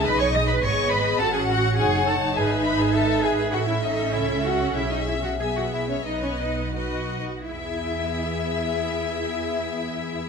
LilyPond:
<<
  \new Staff \with { instrumentName = "Violin section" } { \time 4/4 \key e \major \tempo 4 = 95 b''16 cis'''16 dis'''16 b''16 cis'''8 b''8 a''16 gis''16 fis''8 gis''8 a''8 | gis''8 b''16 gis''16 a''8 gis''8 fis''16 e''16 dis''8 e''8 fis''8 | e''16 dis''16 e''16 fis''16 gis''16 fis''16 e''16 cis''16 dis''16 cis''16 dis''8 fis''4 | e''1 | }
  \new Staff \with { instrumentName = "Violin section" } { \time 4/4 \key e \major dis''4 dis''4 fis''4 fis''4 | e''2 e''2 | e''4 e''4 dis''4 dis''8 r8 | e''1 | }
  \new Staff \with { instrumentName = "Viola section" } { \time 4/4 \key e \major << { gis'4 gis'4 fis'4 cis''4 | b'4 b'4 a'2 | gis'4 gis'4 b'4 b'8 r8 | gis'1 | } \\ { dis'4 b4 cis'4 dis'4~ | dis'2 cis'2~ | cis'4 b4 b4 dis'8 r8 | b1 | } >> }
  \new Staff \with { instrumentName = "Cello section" } { \time 4/4 \key e \major b'16 cis''16 dis''16 b'16 cis''8 b'8 a'16 gis'16 fis'8 gis'8 a'8 | gis'8 b'16 gis'16 a'8 gis'8 fis'16 e'16 dis'8 e'8 fis'8 | e'16 dis'16 e'16 fis'16 gis'16 fis'16 e'16 cis'16 dis'16 cis'16 dis'8 fis'4 | e'1 | }
  \new Staff \with { instrumentName = "Double bass section" } { \clef bass \time 4/4 \key e \major b,,4 gis,,4 a,,4 fis,,4 | gis,,2 a,,4 cis,4 | b,,2 b,,4. r8 | e,1 | }
>>